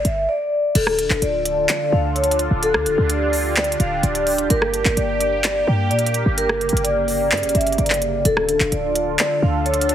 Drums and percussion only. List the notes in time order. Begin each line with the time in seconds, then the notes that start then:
0.05 closed hi-hat
0.75 closed hi-hat, crash
0.87 cross-stick
0.99 closed hi-hat
1.10 clap
1.22 closed hi-hat
1.45 closed hi-hat
1.69 clap, closed hi-hat
2.16 closed hi-hat
2.24 closed hi-hat
2.31 closed hi-hat
2.39 closed hi-hat
2.63 closed hi-hat
2.74 cross-stick
2.86 closed hi-hat
3.10 closed hi-hat
3.33 open hi-hat
3.56 clap, closed hi-hat
3.64 closed hi-hat
3.72 closed hi-hat
3.80 closed hi-hat
4.03 closed hi-hat
4.15 closed hi-hat
4.27 closed hi-hat, open hi-hat
4.38 closed hi-hat
4.50 closed hi-hat
4.62 cross-stick
4.74 closed hi-hat
4.85 clap
4.97 closed hi-hat
5.21 closed hi-hat
5.44 clap, closed hi-hat
5.91 closed hi-hat
5.99 closed hi-hat
6.06 closed hi-hat
6.14 closed hi-hat
6.38 closed hi-hat
6.49 cross-stick
6.61 closed hi-hat
6.69 closed hi-hat
6.77 closed hi-hat
6.85 closed hi-hat
7.08 open hi-hat
7.31 clap, closed hi-hat
7.37 closed hi-hat
7.43 closed hi-hat
7.49 closed hi-hat
7.55 closed hi-hat
7.61 closed hi-hat
7.67 closed hi-hat
7.72 closed hi-hat
7.78 closed hi-hat
7.86 clap, closed hi-hat
7.94 closed hi-hat
8.02 closed hi-hat
8.25 closed hi-hat
8.37 cross-stick
8.49 closed hi-hat
8.60 clap
8.72 closed hi-hat
8.96 closed hi-hat
9.19 clap, closed hi-hat
9.66 closed hi-hat
9.74 closed hi-hat
9.81 closed hi-hat
9.89 closed hi-hat